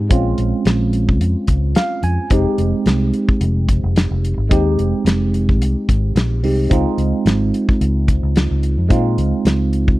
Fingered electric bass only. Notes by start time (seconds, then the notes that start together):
0.11 A#1
0.38 A#1
0.65 A#1
1.20 F2
1.48 C#2
2.03 F2
2.30 F1
2.58 F1
2.86 C2
3.41 F1
3.83 F1
4.11 F1
4.37 G#1
4.51 D#2
4.78 F1
5.05 F1
5.60 C2
5.89 G#1
6.15 A#1
6.43 C2
6.71 C#2
6.98 C#2
7.25 G#1
7.81 C#2
8.23 C#2
8.51 C#2
8.78 F2
8.91 A#2
9.18 C#2
9.45 C#2